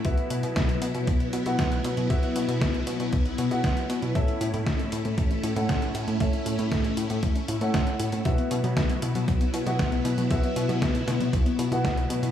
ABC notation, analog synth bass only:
X:1
M:4/4
L:1/16
Q:1/4=117
K:Bdor
V:1 name="Analog synth bass" clef=bass
B,,, z B,, B,, B,,,2 B,, B,, B,,,2 B,, B,, B,,,2 B,, B,, | B,,, z B,, B,, B,,,2 B,, B,, B,,,2 B,, B,, B,,, z B,, B,, | A,,, z A,, A,, A,,,2 A,, A,, A,,,2 A,, A,, A,,,2 A,, A,, | A,,, z A,, A,, A,,,2 A,, A,, A,,, z A,, A,, A,,, z A,, A,, |
B,,, z B,, B,, B,,,2 B,, B,, B,,,2 B,, B,, B,,,2 B,, B,, | B,,, z B,, B,, B,,,2 B,, B,, B,,, z B,, B,, B,,,2 B,, B,, |]